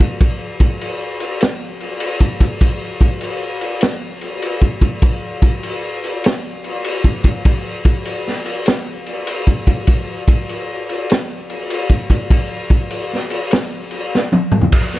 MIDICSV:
0, 0, Header, 1, 2, 480
1, 0, Start_track
1, 0, Tempo, 605449
1, 162, Time_signature, 4, 2, 24, 8
1, 11886, End_track
2, 0, Start_track
2, 0, Title_t, "Drums"
2, 1, Note_on_c, 9, 36, 81
2, 3, Note_on_c, 9, 49, 50
2, 80, Note_off_c, 9, 36, 0
2, 82, Note_off_c, 9, 49, 0
2, 164, Note_on_c, 9, 36, 114
2, 164, Note_on_c, 9, 49, 72
2, 243, Note_off_c, 9, 36, 0
2, 244, Note_off_c, 9, 49, 0
2, 477, Note_on_c, 9, 36, 90
2, 478, Note_on_c, 9, 49, 55
2, 556, Note_off_c, 9, 36, 0
2, 557, Note_off_c, 9, 49, 0
2, 645, Note_on_c, 9, 49, 69
2, 724, Note_off_c, 9, 49, 0
2, 952, Note_on_c, 9, 49, 54
2, 1032, Note_off_c, 9, 49, 0
2, 1114, Note_on_c, 9, 49, 80
2, 1132, Note_on_c, 9, 38, 109
2, 1194, Note_off_c, 9, 49, 0
2, 1211, Note_off_c, 9, 38, 0
2, 1430, Note_on_c, 9, 49, 59
2, 1509, Note_off_c, 9, 49, 0
2, 1587, Note_on_c, 9, 49, 78
2, 1666, Note_off_c, 9, 49, 0
2, 1748, Note_on_c, 9, 36, 77
2, 1827, Note_off_c, 9, 36, 0
2, 1906, Note_on_c, 9, 36, 82
2, 1908, Note_on_c, 9, 49, 58
2, 1985, Note_off_c, 9, 36, 0
2, 1987, Note_off_c, 9, 49, 0
2, 2069, Note_on_c, 9, 36, 111
2, 2071, Note_on_c, 9, 49, 83
2, 2149, Note_off_c, 9, 36, 0
2, 2150, Note_off_c, 9, 49, 0
2, 2383, Note_on_c, 9, 36, 86
2, 2387, Note_on_c, 9, 49, 62
2, 2463, Note_off_c, 9, 36, 0
2, 2466, Note_off_c, 9, 49, 0
2, 2543, Note_on_c, 9, 49, 76
2, 2622, Note_off_c, 9, 49, 0
2, 2861, Note_on_c, 9, 49, 53
2, 2941, Note_off_c, 9, 49, 0
2, 3018, Note_on_c, 9, 49, 74
2, 3036, Note_on_c, 9, 38, 105
2, 3097, Note_off_c, 9, 49, 0
2, 3115, Note_off_c, 9, 38, 0
2, 3339, Note_on_c, 9, 49, 57
2, 3418, Note_off_c, 9, 49, 0
2, 3506, Note_on_c, 9, 49, 70
2, 3586, Note_off_c, 9, 49, 0
2, 3660, Note_on_c, 9, 36, 79
2, 3739, Note_off_c, 9, 36, 0
2, 3816, Note_on_c, 9, 36, 81
2, 3817, Note_on_c, 9, 49, 52
2, 3896, Note_off_c, 9, 36, 0
2, 3897, Note_off_c, 9, 49, 0
2, 3978, Note_on_c, 9, 49, 70
2, 3981, Note_on_c, 9, 36, 110
2, 4058, Note_off_c, 9, 49, 0
2, 4061, Note_off_c, 9, 36, 0
2, 4298, Note_on_c, 9, 36, 92
2, 4299, Note_on_c, 9, 49, 57
2, 4377, Note_off_c, 9, 36, 0
2, 4378, Note_off_c, 9, 49, 0
2, 4464, Note_on_c, 9, 49, 68
2, 4544, Note_off_c, 9, 49, 0
2, 4786, Note_on_c, 9, 49, 50
2, 4865, Note_off_c, 9, 49, 0
2, 4947, Note_on_c, 9, 49, 68
2, 4965, Note_on_c, 9, 38, 114
2, 5027, Note_off_c, 9, 49, 0
2, 5044, Note_off_c, 9, 38, 0
2, 5265, Note_on_c, 9, 49, 54
2, 5344, Note_off_c, 9, 49, 0
2, 5426, Note_on_c, 9, 49, 72
2, 5506, Note_off_c, 9, 49, 0
2, 5584, Note_on_c, 9, 36, 79
2, 5663, Note_off_c, 9, 36, 0
2, 5739, Note_on_c, 9, 49, 57
2, 5741, Note_on_c, 9, 36, 80
2, 5818, Note_off_c, 9, 49, 0
2, 5821, Note_off_c, 9, 36, 0
2, 5908, Note_on_c, 9, 36, 110
2, 5908, Note_on_c, 9, 49, 82
2, 5987, Note_off_c, 9, 49, 0
2, 5988, Note_off_c, 9, 36, 0
2, 6224, Note_on_c, 9, 36, 91
2, 6225, Note_on_c, 9, 49, 64
2, 6303, Note_off_c, 9, 36, 0
2, 6304, Note_off_c, 9, 49, 0
2, 6385, Note_on_c, 9, 49, 78
2, 6465, Note_off_c, 9, 49, 0
2, 6561, Note_on_c, 9, 38, 34
2, 6641, Note_off_c, 9, 38, 0
2, 6702, Note_on_c, 9, 49, 54
2, 6781, Note_off_c, 9, 49, 0
2, 6864, Note_on_c, 9, 49, 73
2, 6881, Note_on_c, 9, 38, 116
2, 6943, Note_off_c, 9, 49, 0
2, 6960, Note_off_c, 9, 38, 0
2, 7186, Note_on_c, 9, 49, 56
2, 7266, Note_off_c, 9, 49, 0
2, 7348, Note_on_c, 9, 49, 68
2, 7428, Note_off_c, 9, 49, 0
2, 7509, Note_on_c, 9, 36, 83
2, 7588, Note_off_c, 9, 36, 0
2, 7666, Note_on_c, 9, 36, 84
2, 7666, Note_on_c, 9, 49, 58
2, 7746, Note_off_c, 9, 36, 0
2, 7746, Note_off_c, 9, 49, 0
2, 7825, Note_on_c, 9, 49, 73
2, 7830, Note_on_c, 9, 36, 114
2, 7904, Note_off_c, 9, 49, 0
2, 7909, Note_off_c, 9, 36, 0
2, 8147, Note_on_c, 9, 36, 92
2, 8149, Note_on_c, 9, 49, 59
2, 8227, Note_off_c, 9, 36, 0
2, 8228, Note_off_c, 9, 49, 0
2, 8318, Note_on_c, 9, 49, 67
2, 8397, Note_off_c, 9, 49, 0
2, 8633, Note_on_c, 9, 49, 53
2, 8713, Note_off_c, 9, 49, 0
2, 8797, Note_on_c, 9, 49, 69
2, 8815, Note_on_c, 9, 38, 109
2, 8877, Note_off_c, 9, 49, 0
2, 8894, Note_off_c, 9, 38, 0
2, 9115, Note_on_c, 9, 49, 57
2, 9194, Note_off_c, 9, 49, 0
2, 9277, Note_on_c, 9, 49, 70
2, 9356, Note_off_c, 9, 49, 0
2, 9432, Note_on_c, 9, 36, 76
2, 9511, Note_off_c, 9, 36, 0
2, 9592, Note_on_c, 9, 36, 79
2, 9595, Note_on_c, 9, 49, 53
2, 9671, Note_off_c, 9, 36, 0
2, 9675, Note_off_c, 9, 49, 0
2, 9755, Note_on_c, 9, 36, 106
2, 9755, Note_on_c, 9, 49, 77
2, 9834, Note_off_c, 9, 36, 0
2, 9834, Note_off_c, 9, 49, 0
2, 10070, Note_on_c, 9, 36, 94
2, 10070, Note_on_c, 9, 49, 57
2, 10150, Note_off_c, 9, 36, 0
2, 10150, Note_off_c, 9, 49, 0
2, 10231, Note_on_c, 9, 49, 73
2, 10310, Note_off_c, 9, 49, 0
2, 10412, Note_on_c, 9, 38, 31
2, 10492, Note_off_c, 9, 38, 0
2, 10544, Note_on_c, 9, 49, 58
2, 10624, Note_off_c, 9, 49, 0
2, 10710, Note_on_c, 9, 49, 81
2, 10727, Note_on_c, 9, 38, 111
2, 10789, Note_off_c, 9, 49, 0
2, 10807, Note_off_c, 9, 38, 0
2, 11025, Note_on_c, 9, 49, 60
2, 11105, Note_off_c, 9, 49, 0
2, 11219, Note_on_c, 9, 38, 57
2, 11298, Note_off_c, 9, 38, 0
2, 11354, Note_on_c, 9, 48, 62
2, 11433, Note_off_c, 9, 48, 0
2, 11508, Note_on_c, 9, 45, 86
2, 11586, Note_on_c, 9, 43, 90
2, 11588, Note_off_c, 9, 45, 0
2, 11666, Note_off_c, 9, 43, 0
2, 11672, Note_on_c, 9, 49, 84
2, 11672, Note_on_c, 9, 57, 125
2, 11675, Note_on_c, 9, 36, 121
2, 11751, Note_off_c, 9, 49, 0
2, 11751, Note_off_c, 9, 57, 0
2, 11754, Note_off_c, 9, 36, 0
2, 11844, Note_on_c, 9, 38, 36
2, 11886, Note_off_c, 9, 38, 0
2, 11886, End_track
0, 0, End_of_file